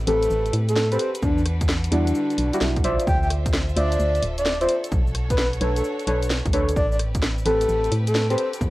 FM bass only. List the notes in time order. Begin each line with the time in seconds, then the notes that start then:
0.07 A1
0.30 A1
0.53 A2
1.23 E2
1.92 E2
2.38 B1
2.61 B1
2.84 B1
3.07 D2
3.76 D2
3.99 D2
4.23 D1
4.92 B1
5.61 B1
6.07 B1
6.46 B1
6.53 D2
6.76 A1
7.46 A1
7.69 A1
7.92 A2
8.61 E2